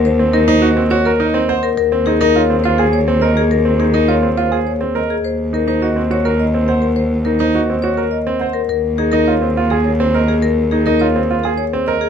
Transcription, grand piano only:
\new Staff \with { instrumentName = "Grand piano" } { \time 3/4 \key des \major \tempo 4 = 104 r16 c'16 ees'16 ees'16 ges'16 c'16 ges'16 bes'16 ees'16 c'16 c''16 r16 | r16 c'16 ees'16 ees'16 f'16 c'16 f'16 aes'16 r16 c'16 bes'16 r16 | r16 c'16 ees'16 ees'16 f'16 c'16 f'16 aes'16 r16 c'16 bes'16 r16 | r8 ees'16 ees'16 ges'16 c'16 ges'16 bes'16 r16 c'16 c''16 r16 |
r8 ees'16 ees'16 ges'16 c'16 ges'16 bes'16 r16 c'16 c''16 r16 | r8 ees'16 ees'16 f'16 c'16 f'16 aes'16 r16 c'16 bes'16 r16 | r8 ees'16 ees'16 f'16 c'16 f'16 aes'16 r16 c'16 bes'16 r16 | }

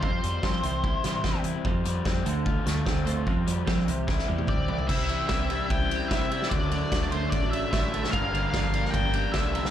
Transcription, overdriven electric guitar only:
\new Staff \with { instrumentName = "Overdriven electric guitar" } { \time 4/4 \key c \mixolydian \tempo 4 = 148 f8 g8 c'8 c8 e'8 g8 c'8 e'8 | f8 g8 c'8 d8 f'8 a8 c'8 f'8 | f8 g8 c'8 c8 e'8 g8 c'8 e'8 | <c g c' e'>8 <g c' e'>8 <c g c' e'>8 <g c' e'>4. <c g c' e'>8 <g c' e'>8 |
<d fis a d'>8 <fis a d'>8 <d fis a d'>8 <fis a d'>4. <d fis a d'>8 <fis a d'>8 | <g, d g bes d'>8 <g bes d'>8 <d g bes d'>8 <g bes d'>4. <g, d g bes d'>8 <g bes d'>8 | }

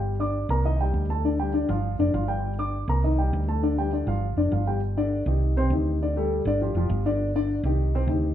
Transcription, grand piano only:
\new Staff \with { instrumentName = "Grand piano" } { \time 4/4 \key g \minor \tempo 4 = 201 <g g' g''>8 <d' d'' d'''>4 <bes bes' bes''>8 <ees ees' ees''>8 <g g' g''>4 <a a' a''>8 | <d d' d''>8 <g g' g''>8 <d d' d''>8 <f f' f''>4 <d d' d''>8 <f f' f''>8 <g g' g''>8~ | <g g' g''>8 <d' d'' d'''>4 <bes bes' bes''>8 <ees ees' ees''>8 <g g' g''>4 <a a' a''>8 | <d d' d''>8 <g g' g''>8 <d d' d''>8 <f f' f''>4 <d d' d''>8 <f f' f''>8 <g g' g''>8 |
r8 <d d' d''>4 <ees ees' g'>4 <c c' c''>8 <ees ees' g'>4 | <d d' d''>8 <g g' a'>4 <d d' d''>8 <f f' g'>8 <f f' g'>4 <d d' d''>8~ | <d d' d''>8 <d d' d''>4 <ees ees' g'>4 <c c' c''>8 <ees ees' g'>4 | }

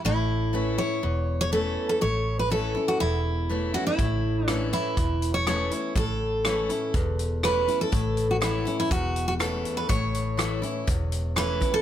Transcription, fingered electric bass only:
\new Staff \with { instrumentName = "Fingered electric bass" } { \clef bass \time 4/4 \key a \major \tempo 4 = 122 a,,2 e,,2 | a,,2 e,,2 | a,,2 e,,2 | a,,2 e,,2 |
a,,2 e,,2 | a,,2 e,,2 | }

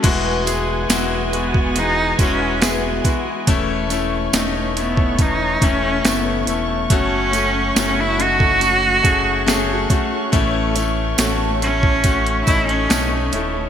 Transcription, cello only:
\new Staff \with { instrumentName = "Cello" } { \time 4/4 \key e \major \tempo 4 = 70 r4. b8 dis'8 cis'8 b8. r16 | r4. b8 dis'8 cis'8 b8. r16 | cis'4 cis'16 e'16 fis'2 r8 | r4. cis'4 e'16 cis'8. r8 | }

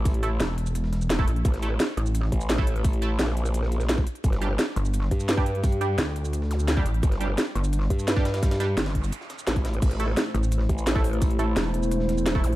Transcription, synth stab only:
\new Staff \with { instrumentName = "Synth stab" } { \time 4/4 \key a \phrygian \tempo 4 = 172 r8 <a e' a'>16 r2 r8 <a e' a'>16 r8 | r8 <a e' a'>16 r2 r8 <a e' a'>16 r8 | r8 <a e' a'>16 r2. r16 | r8 <g d' g'>16 r2 r8 <g d' g'>16 r8 |
r8 <g d' g'>16 r2 r8 <g d' g'>16 r8 | r8 <g d' g'>16 r2 r8 <g d' g'>16 r8 | r8 <g d' g'>16 r2. r16 | r8 <a e' a'>16 r2 r8 <a e' a'>16 r8 |
r8 <a e' a'>16 r2 r8 <a e' a'>16 r8 | }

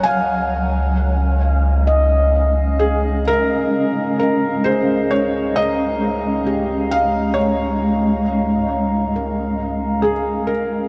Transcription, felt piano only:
\new Staff \with { instrumentName = "Felt piano" } { \time 4/4 \key des \major \tempo 4 = 66 aes''2. aes'8 bes'8~ | \key des \lydian bes'8 bes'8 c''8 des''8 ees''4. f''8 | des''2. aes'8 bes'8 | }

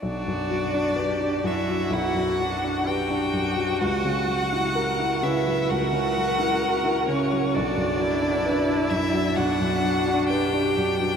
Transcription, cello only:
\new Staff \with { instrumentName = "Cello" } { \time 4/4 \key b \minor \tempo 4 = 64 d'4. e'8 fis'4 g'4 | fis'4. e'8 fis'4. cis'8 | d'4. e'8 fis'4 g'4 | }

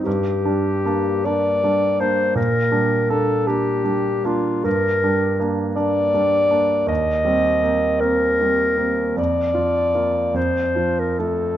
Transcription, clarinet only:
\new Staff \with { instrumentName = "Clarinet" } { \time 6/8 \key g \minor \tempo 4. = 52 g'4. d''4 c''8 | bes'4 a'8 g'4 f'8 | \key c \dorian bes'4~ bes'16 r16 d''4. | ees''4. bes'4. |
d''4. c''8. bes'16 a'8 | }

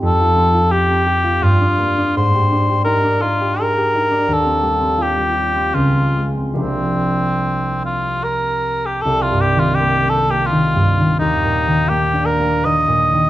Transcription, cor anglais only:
\new Staff \with { instrumentName = "Cor anglais" } { \time 3/4 \key c \minor \tempo 4 = 83 a'4 g'4 f'4 | c''4 bes'8 f'8 bes'4 | a'4 g'4 f'8. r16 | c'4. f'8 bes'8. g'16 |
a'16 f'16 g'16 f'16 g'8 a'16 g'16 f'4 | ees'4 g'8 bes'8 ees''4 | }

